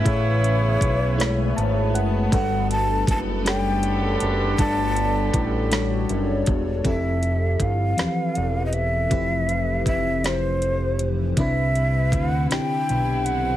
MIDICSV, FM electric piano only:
0, 0, Header, 1, 2, 480
1, 0, Start_track
1, 0, Tempo, 754717
1, 34, Time_signature, 6, 3, 24, 8
1, 8629, End_track
2, 0, Start_track
2, 0, Title_t, "FM electric piano"
2, 0, Program_c, 0, 5
2, 0, Control_c, 0, 64, 127
2, 0, Note_on_c, 0, 57, 65
2, 0, Note_on_c, 0, 64, 62
2, 0, Note_on_c, 0, 68, 62
2, 0, Note_on_c, 0, 71, 63
2, 0, Note_on_c, 0, 73, 73
2, 26, Note_off_c, 0, 57, 0
2, 26, Note_on_c, 0, 57, 82
2, 29, Note_off_c, 0, 64, 0
2, 29, Note_on_c, 0, 64, 73
2, 34, Note_off_c, 0, 68, 0
2, 34, Note_on_c, 0, 68, 73
2, 38, Note_off_c, 0, 71, 0
2, 38, Note_on_c, 0, 71, 76
2, 41, Note_on_c, 0, 76, 91
2, 670, Note_off_c, 0, 57, 0
2, 671, Note_off_c, 0, 64, 0
2, 674, Note_off_c, 0, 68, 0
2, 676, Note_off_c, 0, 71, 0
2, 677, Note_off_c, 0, 76, 0
2, 751, Note_on_c, 0, 57, 79
2, 753, Note_on_c, 0, 64, 72
2, 757, Note_on_c, 0, 56, 80
2, 762, Note_on_c, 0, 71, 71
2, 767, Note_off_c, 0, 73, 0
2, 767, Note_on_c, 0, 73, 95
2, 994, Note_on_c, 0, 81, 79
2, 1217, Note_off_c, 0, 81, 0
2, 1237, Note_on_c, 0, 78, 76
2, 1392, Note_off_c, 0, 57, 0
2, 1393, Note_off_c, 0, 64, 0
2, 1395, Note_off_c, 0, 56, 0
2, 1398, Note_off_c, 0, 71, 0
2, 1400, Note_off_c, 0, 73, 0
2, 1459, Note_off_c, 0, 78, 0
2, 1469, Note_on_c, 0, 55, 85
2, 1475, Note_on_c, 0, 62, 74
2, 1479, Note_on_c, 0, 66, 75
2, 1482, Control_c, 0, 64, 0
2, 1483, Note_on_c, 0, 69, 77
2, 1488, Note_on_c, 0, 71, 91
2, 1612, Control_c, 0, 64, 127
2, 2112, Note_off_c, 0, 55, 0
2, 2114, Note_off_c, 0, 62, 0
2, 2116, Note_off_c, 0, 66, 0
2, 2119, Note_off_c, 0, 69, 0
2, 2121, Note_off_c, 0, 71, 0
2, 2191, Note_on_c, 0, 55, 66
2, 2194, Note_on_c, 0, 62, 65
2, 2200, Note_on_c, 0, 67, 68
2, 2204, Note_on_c, 0, 69, 64
2, 2209, Note_on_c, 0, 73, 77
2, 2832, Note_off_c, 0, 55, 0
2, 2834, Note_off_c, 0, 62, 0
2, 2837, Note_off_c, 0, 67, 0
2, 2839, Note_off_c, 0, 69, 0
2, 2841, Note_off_c, 0, 73, 0
2, 2916, Note_on_c, 0, 55, 82
2, 2921, Note_on_c, 0, 62, 73
2, 2926, Note_on_c, 0, 66, 71
2, 2930, Note_on_c, 0, 69, 77
2, 2936, Note_on_c, 0, 74, 90
2, 3555, Note_off_c, 0, 55, 0
2, 3558, Note_off_c, 0, 62, 0
2, 3560, Note_off_c, 0, 66, 0
2, 3562, Note_off_c, 0, 69, 0
2, 3565, Note_off_c, 0, 74, 0
2, 3632, Note_on_c, 0, 55, 77
2, 3638, Note_on_c, 0, 62, 71
2, 3640, Note_on_c, 0, 66, 72
2, 3648, Note_on_c, 0, 69, 70
2, 3651, Note_on_c, 0, 73, 88
2, 4273, Note_off_c, 0, 55, 0
2, 4276, Note_off_c, 0, 62, 0
2, 4277, Note_off_c, 0, 66, 0
2, 4281, Note_off_c, 0, 69, 0
2, 4283, Note_off_c, 0, 73, 0
2, 4348, Note_on_c, 0, 53, 69
2, 4353, Note_on_c, 0, 60, 62
2, 4358, Note_on_c, 0, 64, 59
2, 4361, Control_c, 0, 64, 0
2, 4365, Note_on_c, 0, 67, 62
2, 4368, Note_on_c, 0, 69, 76
2, 4490, Control_c, 0, 64, 127
2, 4991, Note_off_c, 0, 53, 0
2, 4993, Note_off_c, 0, 60, 0
2, 4996, Note_off_c, 0, 64, 0
2, 5000, Note_off_c, 0, 67, 0
2, 5001, Note_off_c, 0, 69, 0
2, 5065, Note_on_c, 0, 53, 59
2, 5070, Note_on_c, 0, 60, 51
2, 5077, Note_on_c, 0, 52, 53
2, 5079, Note_on_c, 0, 67, 53
2, 5085, Note_on_c, 0, 71, 65
2, 5709, Note_off_c, 0, 53, 0
2, 5712, Note_off_c, 0, 60, 0
2, 5715, Note_off_c, 0, 52, 0
2, 5716, Note_off_c, 0, 67, 0
2, 5719, Note_off_c, 0, 71, 0
2, 5785, Note_on_c, 0, 53, 71
2, 5791, Note_on_c, 0, 60, 61
2, 5798, Note_on_c, 0, 64, 64
2, 5799, Note_on_c, 0, 67, 66
2, 5802, Note_on_c, 0, 71, 77
2, 6430, Note_off_c, 0, 53, 0
2, 6432, Note_off_c, 0, 60, 0
2, 6436, Note_off_c, 0, 64, 0
2, 6436, Note_off_c, 0, 67, 0
2, 6438, Note_off_c, 0, 71, 0
2, 6513, Note_on_c, 0, 53, 60
2, 6515, Note_on_c, 0, 60, 56
2, 6523, Note_on_c, 0, 64, 54
2, 6525, Note_on_c, 0, 67, 53
2, 6531, Note_on_c, 0, 72, 65
2, 7153, Note_off_c, 0, 53, 0
2, 7154, Note_off_c, 0, 60, 0
2, 7158, Note_off_c, 0, 64, 0
2, 7160, Note_off_c, 0, 67, 0
2, 7163, Note_off_c, 0, 72, 0
2, 7231, Note_on_c, 0, 48, 78
2, 7237, Note_on_c, 0, 60, 64
2, 7240, Note_on_c, 0, 62, 69
2, 7242, Control_c, 0, 64, 0
2, 7247, Note_on_c, 0, 64, 68
2, 7251, Note_on_c, 0, 71, 85
2, 7359, Control_c, 0, 64, 127
2, 7872, Note_off_c, 0, 48, 0
2, 7875, Note_off_c, 0, 60, 0
2, 7877, Note_off_c, 0, 62, 0
2, 7880, Note_off_c, 0, 64, 0
2, 7883, Note_off_c, 0, 71, 0
2, 7948, Note_on_c, 0, 50, 64
2, 7950, Note_on_c, 0, 60, 58
2, 7956, Note_on_c, 0, 62, 59
2, 7963, Note_on_c, 0, 64, 58
2, 7968, Note_on_c, 0, 67, 73
2, 8591, Note_off_c, 0, 50, 0
2, 8592, Note_off_c, 0, 60, 0
2, 8595, Note_off_c, 0, 62, 0
2, 8598, Note_off_c, 0, 64, 0
2, 8601, Note_off_c, 0, 67, 0
2, 8629, End_track
0, 0, End_of_file